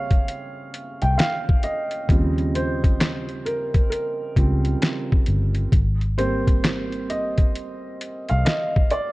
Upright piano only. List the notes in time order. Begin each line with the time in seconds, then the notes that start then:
Already playing: C#3 G3 C4 G#4 C#5 F5
1.02 G5
1.18 F5
1.64 D#5
2.10 C#3 F3 G3 C4
2.55 C5
3.46 A#4
3.90 A#4
4.37 C#3 F3 G3 C4
6.18 G3 A#3 C4 C5
7.10 D#5
8.30 F5
8.45 D#5
8.91 D5